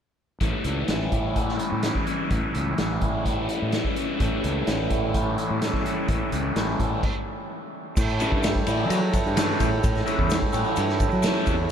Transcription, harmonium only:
4.19 7.00 E4 medium
4.19 7.00 A4 medium
4.19 7.00 C#5 medium
4.19 7.00 G5 medium
7.97 11.71 E4 medium
7.97 11.71 A4 medium
7.97 11.71 C#5 medium
7.97 11.71 G5 medium

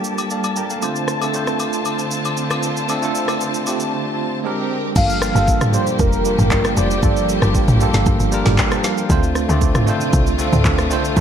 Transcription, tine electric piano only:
0.00 0.84 G3 medium
0.00 0.84 A#3 medium
0.00 0.83 D4 medium
0.00 0.84 F4 medium
0.00 0.32 A4 medium
0.00 0.84 C5 medium
0.31 0.56 A4 medium
0.31 0.55 D5 medium
0.31 0.55 F5 medium
0.57 0.70 A#4 medium
0.57 0.69 G5 medium
0.57 0.81 A#5 medium
0.71 0.95 A4 medium
0.71 0.95 F5 medium
0.82 1.13 A3 medium
0.82 1.13 C4 medium
0.82 1.14 D4 medium
0.82 1.14 F4 medium
0.82 1.14 C5 medium
1.21 1.31 A3 medium
1.21 1.31 C4 medium
1.21 1.32 D4 medium
1.21 1.32 F4 medium
1.21 1.32 A4 medium
1.33 2.17 A3 medium
1.33 2.17 C4 medium
1.33 2.17 D4 medium
1.33 2.18 F4 medium
1.33 2.18 C5 loud
2.88 2.99 A3 medium
2.88 3.00 C4 medium
2.88 3.00 D4 medium
2.88 3.00 F4 medium
2.88 3.01 A4 medium
3.02 3.54 A3 medium
3.02 3.54 C4 medium
3.02 3.55 D4 medium
3.02 3.55 F4 medium
3.02 3.55 A4 medium
3.66 4.44 A3 medium
3.66 4.43 C4 medium
3.66 4.44 D4 medium
3.66 4.45 F4 medium
3.66 4.44 G4 loud
4.44 4.86 G#3 medium
4.44 4.86 C4 medium
4.44 4.86 D4 medium
4.44 4.87 G4 medium
4.44 4.87 A#4 loud
4.96 5.27 G3 medium
4.96 5.27 A#3 medium
4.96 5.28 D4 medium
4.96 5.28 F4 medium
4.96 5.28 A4 medium
5.35 5.66 G3 medium
5.35 5.66 A#3 medium
5.35 5.66 D4 medium
5.35 5.67 F4 medium
5.35 5.67 A4 medium
5.73 6.15 G3 medium
5.73 6.15 A#3 medium
5.73 6.16 D4 medium
5.73 6.16 F4 medium
5.73 6.16 G4 medium
6.25 6.67 G3 medium
6.25 6.67 A#3 medium
6.25 6.67 D4 medium
6.25 6.68 F4 medium
6.25 6.68 A#4 medium
6.76 6.98 G3 medium
6.76 6.98 A#3 medium
6.76 6.98 D4 medium
6.76 6.99 F4 medium
6.76 6.99 C5 medium
7.02 7.34 G3 medium
7.02 7.34 A#3 medium
7.02 7.34 D4 medium
7.02 7.35 F4 medium
7.02 7.35 A4 medium
7.42 7.73 G3 medium
7.42 7.73 A#3 medium
7.42 7.73 D4 medium
7.42 7.74 F4 medium
7.42 7.74 G4 medium
7.80 8.22 G3 medium
7.80 8.22 A#3 medium
7.80 8.23 D4 medium
7.80 8.23 F4 medium
7.80 8.23 A4 loud
8.32 8.74 G3 medium
8.32 8.74 A#3 medium
8.32 8.74 D4 medium
8.32 8.75 F4 medium
8.32 8.59 A#4 loud
8.32 8.57 A#5 medium
8.59 8.72 A4 medium
8.59 8.71 F5 medium
8.59 8.83 G5 medium
8.72 8.97 C5 medium
8.72 8.96 A5 medium
8.85 9.08 F5 medium
8.98 9.23 A#4 medium
8.98 9.22 G5 medium
9.09 9.41 A3 medium
9.09 9.41 C4 medium
9.09 9.41 D4 medium
9.09 9.42 F4 medium
9.09 9.42 C5 loud
9.48 9.80 A3 loud
9.48 9.80 C4 medium
9.48 9.80 D4 medium
9.48 9.81 F4 medium
9.48 9.81 D5 loud
9.87 10.29 A3 loud
9.87 10.29 C4 medium
9.87 10.29 D4 medium
9.87 10.30 F4 medium
9.87 10.30 C5 loud
10.38 10.80 A3 medium
10.38 10.81 C4 medium
10.38 10.81 D4 medium
10.38 10.81 F4 medium
10.38 10.82 A4 loud
10.90 11.11 A3 loud
10.90 11.12 C4 medium
10.90 11.12 D4 medium
10.90 11.12 F4 medium
10.90 11.13 C5 loud
11.16 11.21 A3 loud
11.16 11.21 C4 medium
11.16 11.21 D4 medium

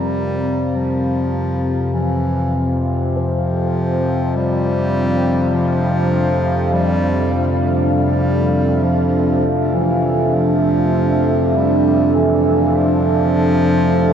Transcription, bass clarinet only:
0.00 0.77 G3 loud
0.76 1.95 F3 loud
1.94 2.85 E3 medium
3.15 4.38 F3 medium
4.36 5.56 G3 loud
5.54 6.74 F3 loud
6.73 7.68 G3 loud
7.94 8.85 G3 loud
8.84 9.75 F3 medium
9.73 10.35 E3 medium
10.34 11.58 F3 loud
11.56 12.16 G3 loud
12.15 12.77 E3 medium
12.76 14.13 F3 loud

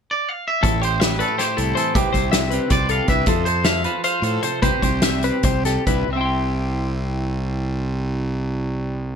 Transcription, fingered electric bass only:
0.63 1.21 A1 medium
1.58 1.72 C2 medium
1.95 2.03 C2 medium
2.14 2.58 C2 medium
2.71 3.00 C2 medium
3.08 3.23 C2 medium
3.27 3.86 F2 medium
4.22 4.38 A2 medium
4.62 4.70 C2 medium
4.82 5.30 C2 medium
5.44 5.77 C2 medium
5.86 6.04 C2 medium
6.08 9.16 C2 medium

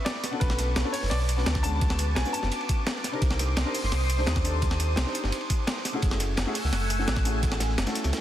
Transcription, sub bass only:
0.41 0.75 B1 loud
0.76 0.84 B1 loud
1.03 1.10 F#1 loud
1.11 1.45 B1 loud
1.46 2.15 D2 loud
2.17 2.24 B1 medium
2.43 2.51 F#1 medium
3.22 3.56 C2 loud
3.57 3.65 C2 loud
3.83 3.91 G1 loud
3.92 4.26 C2 loud
4.27 4.96 D#2 loud
4.97 5.05 C2 medium
5.24 5.32 G1 medium
6.03 6.36 F#1 loud
6.38 6.46 F#1 medium
6.64 6.72 C#2 loud
6.73 7.06 F#1 medium
7.08 7.77 A1 loud
7.78 7.86 F#1 loud
8.04 8.12 C#2 medium

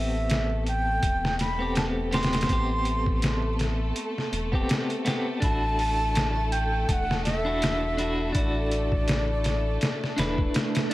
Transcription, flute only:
0.00 0.64 E5 medium
0.68 1.37 G5 medium
1.41 1.74 B5 loud
1.77 1.85 A5 medium
2.14 3.56 C6 loud
5.43 6.54 A5 loud
6.52 6.84 G5 loud
6.84 6.90 G5 medium
6.88 7.24 F#5 loud
6.88 6.93 A5 medium
7.25 8.31 E5 loud
8.35 10.50 D5 medium

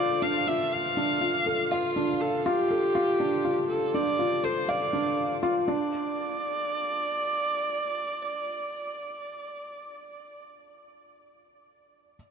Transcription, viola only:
0.00 0.24 D5 loud
0.23 0.49 F5 loud
0.48 0.74 E5 loud
0.73 1.73 F5 loud
1.71 2.22 F4 loud
2.21 2.47 A4 loud
2.46 3.69 G4 loud
3.70 3.96 A4 loud
3.95 4.45 D5 loud
4.44 4.70 C5 loud
4.69 5.43 D5 loud
5.68 10.41 D5 loud

